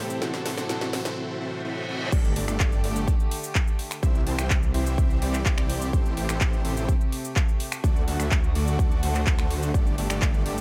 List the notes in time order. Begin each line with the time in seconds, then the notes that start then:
Already playing: A2 E3 G3 C4 E4 G4 A4 C5, riser
0.00 A3 C4 G4
0.10 shaker
0.21 A2 E3 F#3 A3 C4 D4 E4 F#4 A4 C5, snare, shaker
0.34 snare, shaker
0.46 C4 E4 F#4 A4 C5, snare, open hi-hat
0.57 C4 E4 F#4 A4 C5, snare, shaker
0.68 A2 E3 A3 C4 E4 F#4 A4 C5, snare, shaker
0.81 snare, shaker
0.93 C4 E4 F#4 A4 C5, snare, open hi-hat
1.05 C4 E4 F#4 A4 C5, snare, shaker
1.17 C4 E4 F#4 A4 C5, reverse cymbal
1.41 C4 E4 F#4 A4 C5
1.65 C4 E4 F#4 A4 C5
1.89 C4 E4 F#4 A4 C5
2.12 G1 D3 A3 D4 G4 A4 D5, kick, crash, shaker
2.24 shaker
2.36 G1 A3 D4 G4 A4 D5, open hi-hat
2.48 G1 A3 D4 G4 A4 D5, finger snap, shaker
2.60 kick, clap, shaker
2.72 shaker
2.84 G1 A3 D4 G4 A4 D5, open hi-hat
2.96 shaker
3.08 kick, shaker
3.20 shaker
3.31 open hi-hat
3.44 shaker
3.55 kick, clap, shaker
3.67 shaker
3.79 open hi-hat
3.91 finger snap, shaker
4.03 C2 E3 C4 E4 G4 C5 E5, kick, shaker
4.15 shaker
4.27 C2 C4 E4 G4 C5 A5, open hi-hat
4.39 C2 C4 E4 G4 C5 G5, finger snap, shaker
4.50 kick, clap, shaker
4.63 shaker
4.74 C2 C4 E4 G4 C5 E5, open hi-hat
4.86 shaker
4.98 kick, shaker
5.10 shaker
5.22 C2 C4 E4 G4 C5 D5, open hi-hat
5.34 clap, shaker
5.46 kick, clap, shaker
5.58 finger snap, shaker
5.70 open hi-hat
5.82 shaker
5.93 A1 C3 A3 C4 E4 G4 A4 C5, kick, shaker
6.05 shaker
6.17 A1 C4 E4 G4 A4 C5, open hi-hat
6.29 A1 C4 E4 G4 A4 C5, finger snap, shaker
6.41 kick, clap, shaker
6.53 shaker
6.65 A1 C4 E4 G4 A4 C5, open hi-hat
6.77 shaker
6.89 kick, shaker
7.01 shaker
7.12 open hi-hat
7.25 shaker
7.36 kick, clap, shaker
7.48 shaker
7.60 open hi-hat
7.72 finger snap, shaker
7.84 D2 D3 A3 D4 F#4 A4 D5, kick, shaker
7.96 shaker
8.08 D2 A3 D4 F#4 A4 F#5, open hi-hat
8.19 D2 A3 D4 F#4 A4 E5, finger snap, shaker
8.31 kick, clap, shaker
8.44 shaker
8.55 D2 A3 D4 F#4 A4 D5, open hi-hat
8.67 shaker
8.79 kick, shaker
8.91 shaker
9.03 D2 A3 D4 F#4 A4 C5, open hi-hat
9.15 clap, shaker
9.27 kick, clap, shaker
9.39 finger snap, shaker
9.51 open hi-hat
9.63 shaker
9.74 G1 A3 D4 G4 D5, kick, shaker
9.86 shaker
9.98 G1 A3 D4 G4 A4 D5, open hi-hat
10.10 G1 A3 D4 G4 A4 D5, finger snap, shaker
10.22 kick, clap, shaker
10.34 shaker
10.46 G1 A3 D4 G4 A4 D5, open hi-hat
10.58 shaker